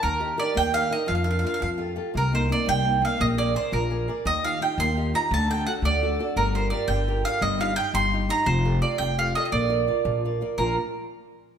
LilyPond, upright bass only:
\new Staff \with { instrumentName = "Upright bass" } { \clef bass \time 6/8 \key bes \major \tempo 4. = 114 ees,4. ees,4. | f,4. f,4. | c,4. c,4. | bes,,4. bes,,4. |
ees,4. ees,4. | d,4. d,4. | g,,4. g,,4. | g,,4. g,,4. |
f,,4. f,,4. | bes,,4. bes,,4. | bes,,8 r2 r8 | }